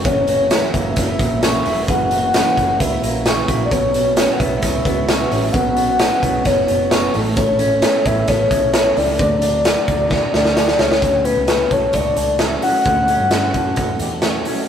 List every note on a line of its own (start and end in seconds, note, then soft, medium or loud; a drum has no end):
0.00 0.50 F#1 loud
0.00 0.54 F#4 medium
0.00 tambourine soft
0.05 1.87 F#2 medium
0.05 0.49 F#2 medium
0.05 0.50 C#3 medium
0.05 0.50 E3 medium
0.05 0.51 A#3 medium
0.05 0.52 C#4 medium
0.05 0.52 F#4 medium
0.05 0.70 C#5 medium
0.05 kick loud
0.05 closed hi-hat medium
0.27 0.73 A#3 medium
0.27 closed hi-hat medium
0.27 tambourine medium
0.50 0.96 F#2 medium
0.50 0.97 C#3 medium
0.50 0.95 E3 medium
0.50 0.96 A#3 medium
0.50 0.98 C#4 medium
0.50 0.96 E4 medium
0.50 0.99 F#4 medium
0.50 snare loud
0.50 closed hi-hat loud
0.50 tambourine medium
0.73 0.93 F#1 medium
0.73 1.18 A#3 medium
0.73 1.91 E5 loud
0.73 kick medium
0.73 closed hi-hat medium
0.96 1.16 F#1 medium
0.96 1.19 E3 medium
0.96 1.20 A#3 medium
0.96 1.20 C#4 medium
0.96 1.08 D4 medium
0.96 kick medium
0.96 snare soft
0.96 closed hi-hat medium
0.96 tambourine soft
1.00 1.18 F#4 medium
1.08 1.65 E4 medium
1.19 1.58 A#1 medium
1.19 2.11 A#3 medium
1.19 1.43 A#3 medium
1.19 1.43 C#4 soft
1.19 1.42 F#4 medium
1.19 kick medium
1.19 closed hi-hat medium
1.19 tambourine medium
1.23 1.42 E3 soft
1.43 1.65 F#2 medium
1.43 1.65 C#3 medium
1.43 1.66 E3 medium
1.43 1.66 A#3 medium
1.43 1.65 C#4 medium
1.43 3.25 F#4 medium
1.43 1.64 F#4 medium
1.43 snare loud
1.43 closed hi-hat medium
1.43 tambourine loud
1.65 1.85 E1 medium
1.65 1.88 E3 soft
1.65 1.88 A#3 medium
1.65 1.88 C#4 medium
1.65 2.34 E4 medium
1.65 1.88 F#4 medium
1.65 open hi-hat medium
1.65 tambourine medium
1.88 2.43 F#1 loud
1.88 2.33 F#2 medium
1.88 3.71 F#2 medium
1.88 2.34 C#3 medium
1.88 2.34 E3 medium
1.88 2.35 A#3 medium
1.88 2.36 C#4 medium
1.88 2.37 F#4 medium
1.88 2.82 F#5 loud
1.88 kick loud
1.88 closed hi-hat medium
1.88 tambourine soft
2.11 2.57 A#3 medium
2.11 closed hi-hat medium
2.11 tambourine medium
2.34 2.80 F#2 medium
2.34 2.80 C#3 medium
2.34 2.79 E3 medium
2.34 2.80 A#3 medium
2.34 2.82 C#4 medium
2.34 2.46 D4 medium
2.34 2.83 F#4 medium
2.34 snare loud
2.34 closed hi-hat loud
2.34 tambourine medium
2.46 2.80 E4 medium
2.57 2.76 F#1 medium
2.57 3.02 A#3 medium
2.57 kick medium
2.57 closed hi-hat medium
2.57 tambourine soft
2.80 2.99 C#2 medium
2.80 3.03 E3 medium
2.80 3.03 A#3 medium
2.80 3.04 C#4 medium
2.80 2.92 D4 medium
2.80 3.03 F#4 medium
2.80 3.48 E5 loud
2.80 kick medium
2.80 closed hi-hat medium
2.92 3.48 E4 soft
3.02 3.41 A#1 medium
3.02 3.76 A#3 medium
3.02 3.26 C#4 medium
3.02 3.26 F#4 medium
3.02 closed hi-hat medium
3.02 tambourine soft
3.07 3.25 E3 soft
3.07 3.26 A#3 soft
3.25 3.48 F#2 medium
3.25 3.49 C#3 medium
3.25 3.49 E3 medium
3.25 3.49 A#3 medium
3.25 3.49 C#4 medium
3.25 5.08 F#4 medium
3.25 3.47 F#4 medium
3.25 snare loud
3.25 closed hi-hat medium
3.25 tambourine medium
3.48 3.68 A#1 medium
3.48 3.71 E3 soft
3.48 3.71 A#3 medium
3.48 3.71 C#4 medium
3.48 3.76 E4 medium
3.48 3.71 F#4 medium
3.48 kick loud
3.48 closed hi-hat medium
3.48 tambourine medium
3.65 3.73 D5 medium
3.71 4.25 B1 loud
3.71 4.15 B2 medium
3.71 5.52 B2 medium
3.71 4.16 F#3 medium
3.71 4.17 B3 medium
3.71 4.18 C#4 medium
3.71 4.18 F#4 medium
3.71 4.33 C#5 medium
3.71 kick loud
3.71 closed hi-hat medium
3.71 tambourine soft
3.94 4.39 B3 medium
3.94 closed hi-hat medium
3.94 tambourine medium
4.16 4.62 B2 medium
4.16 4.61 F#3 medium
4.16 4.63 B3 medium
4.16 4.62 C#4 medium
4.16 4.64 C#4 medium
4.16 4.64 F#4 medium
4.16 snare loud
4.16 closed hi-hat loud
4.16 tambourine medium
4.33 4.41 F#5 medium
4.39 4.59 B1 medium
4.39 4.85 B3 medium
4.39 5.54 E5 loud
4.39 kick medium
4.39 closed hi-hat medium
4.62 4.82 C#2 loud
4.62 4.85 F#3 medium
4.62 4.86 B3 medium
4.62 5.30 C#4 medium
4.62 4.86 C#4 medium
4.62 4.84 F#4 medium
4.62 kick medium
4.62 snare soft
4.62 closed hi-hat medium
4.62 tambourine soft
4.85 5.24 C#2 medium
4.85 5.76 B3 medium
4.85 5.08 B3 soft
4.85 5.09 C#4 soft
4.85 5.08 F#4 medium
4.85 kick medium
4.85 closed hi-hat medium
4.85 tambourine medium
5.08 5.31 B2 medium
5.08 5.31 F#3 medium
5.08 5.32 B3 medium
5.08 5.31 C#4 medium
5.08 6.89 F#4 medium
5.08 5.29 F#4 medium
5.08 snare loud
5.08 closed hi-hat medium
5.08 tambourine loud
5.30 5.51 A1 medium
5.30 5.98 C#4 medium
5.30 5.54 C#4 medium
5.30 5.54 F#4 medium
5.30 open hi-hat medium
5.30 tambourine medium
5.34 5.54 B3 soft
5.52 6.08 B1 loud
5.52 7.18 B2 medium
5.52 5.98 B2 medium
5.52 5.98 F#3 medium
5.52 6.00 B3 medium
5.52 6.00 C#4 medium
5.52 6.00 F#4 medium
5.52 6.47 F#5 loud
5.52 kick loud
5.52 closed hi-hat medium
5.52 tambourine soft
5.76 6.22 B3 medium
5.76 closed hi-hat medium
5.76 tambourine medium
5.99 6.45 B2 medium
5.99 6.44 F#3 medium
5.99 6.46 B3 medium
5.99 6.44 C#4 medium
5.99 6.47 C#4 medium
5.99 snare loud
5.99 closed hi-hat loud
5.99 tambourine medium
6.22 6.42 B1 medium
6.22 6.67 B3 medium
6.22 kick medium
6.22 closed hi-hat medium
6.44 6.65 F#1 loud
6.44 6.68 F#3 medium
6.44 6.69 B3 medium
6.44 7.59 C#4 medium
6.44 6.68 C#4 medium
6.44 7.14 C#5 medium
6.44 kick medium
6.44 snare soft
6.44 closed hi-hat medium
6.44 tambourine soft
6.48 6.66 F#4 medium
6.67 7.08 F#1 medium
6.67 7.39 B3 medium
6.67 6.90 B3 soft
6.67 6.91 C#4 soft
6.67 6.91 F#4 medium
6.67 closed hi-hat medium
6.67 tambourine soft
6.89 7.13 B2 medium
6.89 7.14 F#3 medium
6.89 7.14 B3 medium
6.89 7.14 C#4 medium
6.89 7.18 F#4 medium
6.89 7.13 F#4 medium
6.89 snare loud
6.89 closed hi-hat medium
6.89 tambourine loud
7.14 7.82 A1 medium
7.14 7.36 A3 medium
7.14 7.37 E4 medium
7.14 7.38 A4 medium
7.14 7.37 C#5 medium
7.14 open hi-hat medium
7.14 tambourine medium
7.36 10.86 A3 medium
7.36 7.83 A3 medium
7.36 7.82 B3 medium
7.36 7.83 E4 medium
7.36 7.84 A4 medium
7.36 8.07 C#5 loud
7.36 7.84 C#5 medium
7.36 kick loud
7.36 closed hi-hat medium
7.36 tambourine soft
7.59 8.03 C#4 medium
7.59 closed hi-hat medium
7.59 tambourine medium
7.82 8.31 A3 medium
7.82 8.26 B3 medium
7.82 8.27 E4 medium
7.82 8.29 A4 medium
7.82 8.30 C#5 medium
7.82 snare loud
7.82 closed hi-hat loud
7.82 tambourine medium
8.04 8.25 A1 medium
8.04 8.49 C#4 medium
8.04 8.30 E5 loud
8.04 kick medium
8.04 closed hi-hat medium
8.04 tambourine soft
8.28 8.48 A1 loud
8.28 8.51 B3 medium
8.28 8.95 E4 medium
8.28 8.51 E4 medium
8.28 8.51 A4 medium
8.28 8.73 C#5 loud
8.28 8.49 C#5 medium
8.28 kick medium
8.28 snare soft
8.28 closed hi-hat medium
8.50 8.90 B1 medium
8.50 9.24 C#4 medium
8.50 8.74 E4 soft
8.50 8.74 A4 soft
8.50 8.74 C#5 medium
8.50 kick medium
8.50 closed hi-hat medium
8.50 tambourine medium
8.73 8.97 A3 medium
8.73 8.97 B3 medium
8.73 8.97 E4 medium
8.73 8.97 A4 medium
8.73 9.24 B4 medium
8.73 8.99 C#5 loud
8.73 8.95 C#5 medium
8.73 snare loud
8.73 closed hi-hat medium
8.73 tambourine medium
8.95 9.16 C#2 medium
8.95 9.08 D4 medium
8.95 9.20 E4 soft
8.95 9.20 A4 medium
8.95 9.19 C#5 soft
8.95 10.33 D5 loud
8.95 open hi-hat medium
8.95 tambourine medium
9.08 9.24 E4 soft
9.19 9.74 D2 loud
9.19 9.65 D3 medium
9.19 11.27 D3 medium
9.19 9.65 F#3 medium
9.19 9.66 A3 medium
9.19 9.66 D4 medium
9.19 9.66 F#4 medium
9.19 9.67 D5 medium
9.19 kick loud
9.19 closed hi-hat medium
9.19 tambourine soft
9.42 9.88 D4 medium
9.42 closed hi-hat medium
9.42 tambourine medium
9.65 10.57 D3 medium
9.65 10.58 F#3 medium
9.65 10.10 A3 medium
9.65 10.12 D4 loud
9.65 10.11 F#4 medium
9.65 10.13 F#4 medium
9.65 10.14 D5 loud
9.65 snare loud
9.65 closed hi-hat loud
9.65 tambourine medium
9.88 10.17 D2 loud
9.88 10.34 D4 medium
9.88 kick medium
9.88 closed hi-hat medium
9.88 tambourine soft
10.11 10.34 A3 medium
10.11 10.35 D4 medium
10.11 10.79 F#4 medium
10.11 10.34 F#4 medium
10.11 kick medium
10.11 snare medium
10.11 tambourine soft
10.15 10.33 D5 medium
10.34 10.73 D2 medium
10.34 10.57 A3 medium
10.34 11.24 D4 medium
10.34 10.58 D4 soft
10.34 10.58 F#4 medium
10.34 10.80 D5 medium
10.34 10.57 D5 medium
10.34 snare medium
10.34 tambourine soft
10.45 snare medium
10.57 10.80 D3 medium
10.57 10.80 F#3 medium
10.57 10.81 A3 medium
10.57 10.80 D4 medium
10.57 10.79 F#4 medium
10.57 11.70 A4 medium
10.57 10.77 D5 medium
10.57 snare medium
10.57 tambourine medium
10.68 snare medium
10.78 10.99 C#2 medium
10.78 11.02 A3 soft
10.78 11.03 D4 medium
10.78 11.47 F#4 medium
10.78 11.03 F#4 medium
10.78 11.26 C#5 loud
10.78 11.02 D5 medium
10.78 snare loud
10.78 tambourine medium
10.92 snare loud
11.02 11.32 D2 medium
11.02 11.47 D3 medium
11.02 11.49 A3 medium
11.02 11.50 C#4 medium
11.02 11.49 F#4 medium
11.02 kick loud
11.02 closed hi-hat medium
11.24 12.62 C#4 medium
11.24 11.48 B4 medium
11.24 closed hi-hat medium
11.36 11.66 C#2 medium
11.48 11.71 D3 medium
11.48 11.72 A3 medium
11.48 11.70 C#4 medium
11.48 11.92 F#4 medium
11.48 11.68 F#4 medium
11.48 11.73 B4 medium
11.48 snare loud
11.48 closed hi-hat medium
11.70 11.90 B1 medium
11.70 11.92 A3 soft
11.70 11.94 C#4 soft
11.70 11.93 F#4 soft
11.70 12.16 A4 medium
11.70 11.94 C#5 medium
11.70 kick medium
11.70 closed hi-hat medium
11.93 12.13 C#2 medium
11.93 12.39 D3 medium
11.93 12.40 A3 medium
11.93 12.39 F#4 medium
11.93 12.41 F#4 medium
11.93 12.42 D5 loud
11.93 kick medium
11.93 closed hi-hat medium
12.16 12.55 C#2 medium
12.16 13.56 A4 medium
12.16 closed hi-hat medium
12.39 12.63 D3 medium
12.39 12.63 A3 soft
12.39 12.61 C#4 medium
12.39 13.31 F#4 medium
12.39 12.63 E5 loud
12.39 snare loud
12.39 closed hi-hat medium
12.43 12.60 F#4 medium
12.61 12.86 A3 soft
12.61 12.86 C#4 soft
12.61 13.08 C#4 medium
12.61 12.85 F#4 medium
12.61 13.96 F#5 loud
12.61 open hi-hat medium
12.85 13.15 D2 medium
12.85 13.30 D3 medium
12.85 14.68 D3 medium
12.85 13.32 A3 medium
12.85 13.33 C#4 medium
12.85 13.33 F#4 medium
12.85 kick loud
12.85 closed hi-hat medium
13.08 14.46 C#4 medium
13.08 closed hi-hat medium
13.19 13.49 G2 medium
13.31 13.54 D3 medium
13.31 13.55 A3 medium
13.31 13.55 C#4 medium
13.31 13.44 E4 medium
13.31 snare loud
13.31 closed hi-hat medium
13.35 13.53 F#4 medium
13.44 13.78 F#4 soft
13.54 13.74 F#2 medium
13.54 13.78 A3 soft
13.54 13.78 C#4 medium
13.54 13.77 F#4 medium
13.54 14.01 A4 medium
13.54 kick medium
13.54 closed hi-hat medium
13.76 13.96 F#2 medium
13.76 14.21 D3 medium
13.76 14.23 A3 medium
13.76 14.24 C#4 medium
13.76 14.22 F#4 medium
13.76 kick medium
13.76 closed hi-hat medium
13.81 14.25 F#4 medium
13.99 14.38 E2 medium
13.99 14.12 G4 medium
13.99 closed hi-hat medium
14.12 14.68 A4 medium
14.22 14.46 D3 medium
14.22 14.46 A3 medium
14.22 14.46 C#4 medium
14.22 14.68 F#4 medium
14.22 14.44 F#4 medium
14.22 snare loud
14.22 closed hi-hat medium
14.45 14.67 A3 soft
14.45 14.68 C#4 medium
14.45 14.68 F#4 medium
14.45 open hi-hat medium